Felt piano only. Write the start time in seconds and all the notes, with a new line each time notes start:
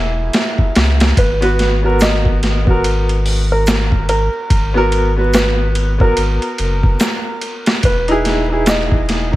Already playing: E4
1.18 B4
2.02 D#5
3.52 A#4
4.09 A#4
5.35 B4
6.01 A#4
7.85 B4
8.69 D#5